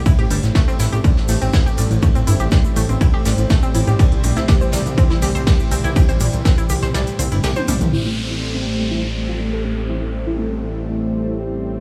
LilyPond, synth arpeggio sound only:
\new Staff \with { instrumentName = "Synth arpeggio sound" } { \time 4/4 \key a \minor \tempo 4 = 122 e'16 g'16 g16 r16 a16 c'16 e'16 g'16 g16 r16 a16 c'16 e'16 g'16 g16 r16 | a16 c'16 e'16 g'16 g16 r16 a16 c'16 e'16 g'16 g16 r16 a16 c'16 e'16 g'16 | g16 r16 c'16 e'16 g'16 c''16 g16 r16 c'16 e'16 g'16 c''16 g16 r16 c'16 e'16 | g'16 c''16 g16 r16 c'16 e'16 g'16 c''16 g16 r16 c'16 e'16 g'16 c''16 g16 r16 |
r1 | r1 | }